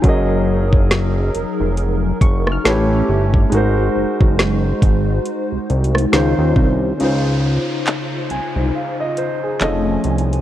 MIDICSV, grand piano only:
0, 0, Header, 1, 2, 480
1, 0, Start_track
1, 0, Key_signature, -5, "major"
1, 0, Tempo, 869565
1, 22, Time_signature, 4, 2, 24, 8
1, 5748, End_track
2, 0, Start_track
2, 0, Title_t, "Grand piano"
2, 0, Program_c, 0, 0
2, 0, Control_c, 0, 64, 127
2, 10, Note_on_c, 0, 54, 82
2, 20, Note_on_c, 0, 61, 70
2, 28, Note_on_c, 0, 68, 72
2, 29, Control_c, 0, 64, 0
2, 38, Note_on_c, 0, 70, 70
2, 48, Note_on_c, 0, 75, 82
2, 120, Control_c, 0, 64, 127
2, 1434, Note_off_c, 0, 54, 0
2, 1439, Note_off_c, 0, 61, 0
2, 1443, Note_off_c, 0, 68, 0
2, 1448, Note_off_c, 0, 70, 0
2, 1453, Note_off_c, 0, 75, 0
2, 1458, Note_on_c, 0, 57, 70
2, 1462, Note_on_c, 0, 64, 68
2, 1467, Note_on_c, 0, 67, 67
2, 1470, Control_c, 0, 64, 0
2, 1472, Note_on_c, 0, 71, 66
2, 1475, Note_on_c, 0, 73, 80
2, 1582, Control_c, 0, 64, 127
2, 1930, Note_on_c, 0, 56, 74
2, 1940, Note_off_c, 0, 57, 0
2, 1940, Note_on_c, 0, 63, 72
2, 1942, Note_off_c, 0, 64, 0
2, 1944, Note_off_c, 0, 67, 0
2, 1947, Note_off_c, 0, 71, 0
2, 1949, Note_off_c, 0, 73, 0
2, 1949, Note_on_c, 0, 66, 72
2, 1950, Control_c, 0, 64, 0
2, 1959, Note_on_c, 0, 70, 74
2, 1969, Note_on_c, 0, 72, 88
2, 2060, Control_c, 0, 64, 127
2, 3354, Note_off_c, 0, 56, 0
2, 3359, Note_off_c, 0, 63, 0
2, 3364, Note_off_c, 0, 66, 0
2, 3368, Note_off_c, 0, 70, 0
2, 3373, Note_off_c, 0, 72, 0
2, 3380, Note_on_c, 0, 51, 74
2, 3384, Note_on_c, 0, 61, 69
2, 3388, Control_c, 0, 64, 0
2, 3389, Note_on_c, 0, 63, 66
2, 3393, Note_on_c, 0, 65, 69
2, 3399, Note_on_c, 0, 72, 82
2, 3491, Control_c, 0, 64, 127
2, 3848, Note_on_c, 0, 49, 70
2, 3850, Note_off_c, 0, 61, 0
2, 3858, Note_on_c, 0, 61, 62
2, 3859, Note_off_c, 0, 63, 0
2, 3861, Note_off_c, 0, 51, 0
2, 3867, Note_on_c, 0, 63, 68
2, 3868, Note_off_c, 0, 65, 0
2, 3869, Control_c, 0, 64, 0
2, 3870, Note_off_c, 0, 72, 0
2, 3877, Note_on_c, 0, 65, 67
2, 3885, Note_on_c, 0, 72, 82
2, 3972, Control_c, 0, 64, 127
2, 4580, Note_off_c, 0, 72, 0
2, 4587, Note_on_c, 0, 80, 59
2, 4813, Note_off_c, 0, 80, 0
2, 4829, Note_on_c, 0, 77, 61
2, 4958, Note_off_c, 0, 77, 0
2, 4968, Note_on_c, 0, 75, 67
2, 5060, Note_off_c, 0, 75, 0
2, 5067, Note_on_c, 0, 72, 65
2, 5197, Note_off_c, 0, 72, 0
2, 5207, Note_on_c, 0, 68, 60
2, 5273, Note_off_c, 0, 49, 0
2, 5278, Note_off_c, 0, 61, 0
2, 5283, Note_off_c, 0, 63, 0
2, 5287, Note_off_c, 0, 65, 0
2, 5299, Note_on_c, 0, 53, 68
2, 5300, Note_off_c, 0, 68, 0
2, 5305, Note_on_c, 0, 61, 64
2, 5308, Control_c, 0, 64, 0
2, 5308, Note_on_c, 0, 68, 62
2, 5313, Note_on_c, 0, 69, 64
2, 5317, Note_on_c, 0, 75, 79
2, 5411, Control_c, 0, 64, 127
2, 5748, Note_off_c, 0, 53, 0
2, 5748, Note_off_c, 0, 61, 0
2, 5748, Note_off_c, 0, 68, 0
2, 5748, Note_off_c, 0, 69, 0
2, 5748, Note_off_c, 0, 75, 0
2, 5748, End_track
0, 0, End_of_file